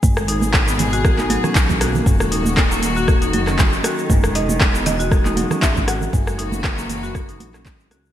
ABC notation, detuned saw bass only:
X:1
M:4/4
L:1/8
Q:"Swing 16ths" 1/4=118
K:G#m
V:1 name="Detuned saw bass" clef=bass
G,,,4- G,,, z B,,,2 | D,,,4- D,,, F,,,2 z | E,,,4- E,,, z G,,,2 | F,,,4- F,,, A,,, G,,, C,, |]